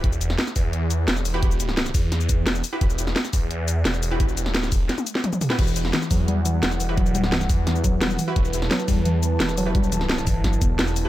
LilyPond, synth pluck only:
\new Staff \with { instrumentName = "Synth pluck" } { \clef bass \time 4/4 \key e \minor \tempo 4 = 173 r1 | r1 | r1 | r1 |
e8 r8 e8 fis8 g8 e8 r8 e8 | fis8 g8 e8 r8 e8 fis8 g8 e8 | r8 e8 fis8 g8 e8 r8 e8 fis8 | g8 e8 r8 e8 fis8 b8 b8 r8 | }